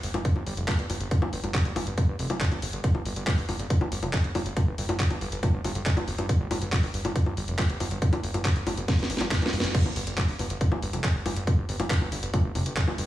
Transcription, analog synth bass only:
0.03 G1
0.14 G1
0.36 G1
0.47 G1
0.57 F1
0.79 G1
0.90 G1
1.00 G1
1.22 G1
1.33 G1
1.44 G1
1.65 G1
1.76 G1
1.87 G1
2.08 G1
2.19 F1
2.30 G1
2.52 G1
2.62 G1
2.73 G1
2.95 G1
3.06 G1
3.16 G1
3.38 G1
3.49 G1
3.59 G1
3.81 G1
3.92 G1
4.03 F1
4.24 G1
4.35 G1
4.46 G1
4.67 G1
4.78 G1
4.89 G1
5.11 G1
5.21 G1
5.32 G1
5.54 G1
5.64 G1
5.75 G1
5.97 G1
6.08 G1
6.18 G2
6.40 G1
6.51 G1
6.62 G1
6.83 G1
6.94 G1
7.05 G1
7.26 G1
7.37 G1
7.48 F1
7.70 G1
7.80 G1
7.91 G1
8.13 G1
8.24 G1
8.34 G1
8.56 G1
8.67 G1
8.77 G1
8.99 G1
9.10 G1
9.21 G1
9.42 G1
9.53 G1
9.64 G1
9.85 G1
9.96 G1
10.07 G1
10.29 G1
10.39 G1
10.50 G1
10.72 G1
10.83 G1
10.93 F1
11.15 G1
11.26 G1
11.36 G1
11.58 G1
11.69 G1
11.80 G1
12.01 G1
12.12 G1
12.23 G1
12.44 G1
12.55 F1
12.66 G1
12.88 G1
12.98 G1

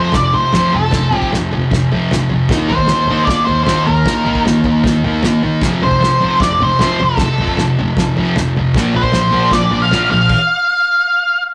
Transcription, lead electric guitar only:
Already playing: C5
0.15 D5
0.34 C5
0.55 C5
0.74 A4
1.16 G4
2.69 C5
3.25 D5
3.45 C5
3.63 C5
3.84 A#4
5.83 C5
6.41 D5
6.63 C5
6.81 C5
7.03 A4
8.97 C5
9.53 D5
9.82 F5
10.11 F5

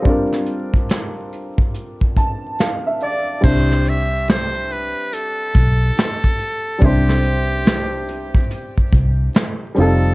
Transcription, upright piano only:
Already playing: A4 C5
0.02 G3 C4 D4
0.07 F4 A#4
2.17 A5
2.60 F5
2.86 E5
3.02 D5
3.41 G3 C4 D4
3.45 E4 G4
6.79 G3 C4 D4
6.84 E4 C5
9.75 G3 C4 D#4
9.80 F4 A4

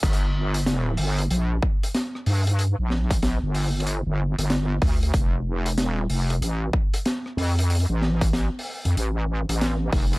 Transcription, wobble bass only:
0.03 G1
0.99 G1
1.30 A#1
2.27 G2
2.79 A#1
3.43 G1
4.06 G1
4.38 G1
4.82 D2
5.14 F1
5.80 E1
6.10 F1
6.41 A1
7.37 F2
7.89 A1
8.85 F2
8.96 A1
9.49 A1
9.93 F1

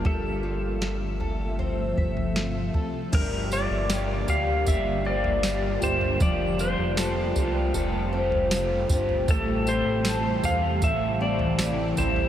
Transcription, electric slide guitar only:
0.06 A4
3.15 A#4
3.53 D5
4.30 F5
4.68 E5
5.06 D5
5.84 C5
6.22 D5
6.60 C5
7.59 A#4
9.31 A4
9.69 C5
10.45 F5
10.84 E5
11.22 D5
11.98 C5

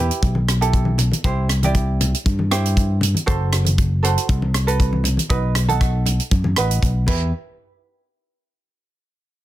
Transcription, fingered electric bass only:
0.23 B1
1.24 C2
2.26 G2
3.28 F#1
4.29 C2
5.30 B1
6.31 F#2
6.57 A1
6.83 B1
7.08 E2

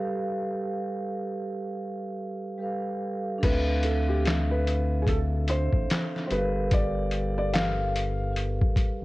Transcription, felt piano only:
3.44 B4
3.84 A4
4.09 G4
4.26 A4
4.51 B4
5.02 G#4
5.09 A4
5.50 C5
6.26 C5
6.32 B4
6.73 D5
7.38 D5
7.54 F5

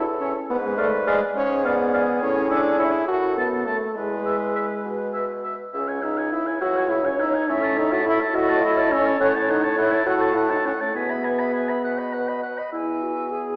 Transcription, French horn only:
0.20 C#4
0.50 B3
0.64 G#3
0.77 A3
1.07 G#3
1.35 C#4
1.65 B3
2.22 C#4
2.50 D4
2.79 E4
3.07 F#4
3.37 B3
3.67 A3
3.95 G#3
5.73 C#4
6.03 D#4
6.32 E4
6.61 F#4
6.90 E4
7.05 C#4
7.19 D#4
7.48 C#4
7.77 D#4
7.91 F#4
8.05 E4
8.34 F#4
8.63 E4
8.91 C#4
9.20 C#4
9.49 D#4
9.77 E4
10.06 F#4
10.35 E4
10.50 D#4
10.65 C#4
10.80 A3
10.95 B3
12.74 B3

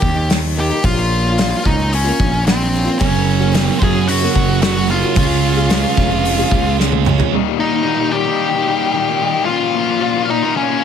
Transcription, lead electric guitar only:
Already playing: G4 G5
0.59 G4 G5
0.85 F4 F5
1.66 D#4 D#5
1.94 C#4 C#5
2.46 C4 C5
2.99 C#4 C#5
3.58 C5
3.83 G#4 G#5
4.07 F#4 F#5
4.62 F#4 F#5
4.91 F4 F5
7.60 D#4 D#5
8.12 G4 G5
9.45 F4 F5
10.30 D#4 D#5
10.56 C#4 C#5

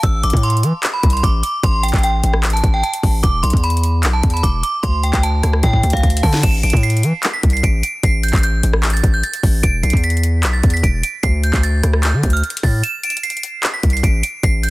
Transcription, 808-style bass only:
0.03 A1
0.23 A1
0.33 A2
0.63 E3
1.03 C2
1.23 A1
1.63 A1
1.93 A1
2.23 A1
2.64 A1
3.03 A1
3.24 E1
3.43 B1
3.53 E2
4.03 B1
4.23 E2
4.43 E1
4.83 D2
5.13 D2
5.43 D2
5.63 A2
5.84 D2
5.93 D2
6.23 D3
6.43 A1
6.63 A1
6.73 A2
7.04 E3
7.43 C2
7.63 A1
8.03 A1
8.33 A1
8.63 A1
9.04 A1
9.43 A1
9.64 E1
9.83 B1
9.93 E2
10.43 B1
10.64 E2
10.83 E1
11.23 D2
11.53 D2
11.84 D2
12.13 D3
12.24 D2
12.63 A2
13.83 C2
14.03 A1
14.43 A1

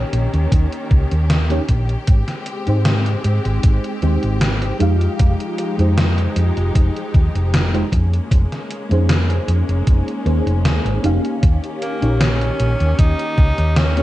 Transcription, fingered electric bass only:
0.13 A#1
0.34 D#2
0.52 D#2
0.91 C#2
1.12 D#2
1.69 A#1
2.08 G#1
2.68 G#2
3.25 G#2
3.45 G#1
3.64 G#1
4.03 D#2
4.24 G#1
4.80 F2
5.20 F1
5.79 F2
6.36 F2
6.57 F1
6.75 F1
7.14 D#2
7.35 F1
7.92 F2
8.31 F1
8.91 F2
9.48 F2
9.69 F1
9.87 F1
10.26 D#2
10.46 F1
10.65 D#2
10.85 G#1
11.04 F1
11.43 D#2
12.03 A#1
12.60 A#1
12.81 D#2
12.99 D#2
13.38 C#2
13.58 D#2

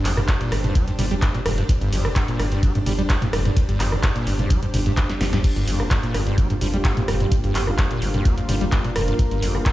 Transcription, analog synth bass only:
0.05 G1
0.52 G1
0.99 G1
1.46 F1
1.81 G1
1.93 G1
2.39 G1
2.86 G1
3.33 F1
3.69 G1
3.80 G1
4.27 G1
4.74 G1
5.21 G1
5.56 G1
5.67 G1
6.14 G1
6.61 G1
7.08 F1
7.44 G1
7.55 G1
8.02 G1
8.49 G1
8.96 F1
9.31 G1
9.43 G1

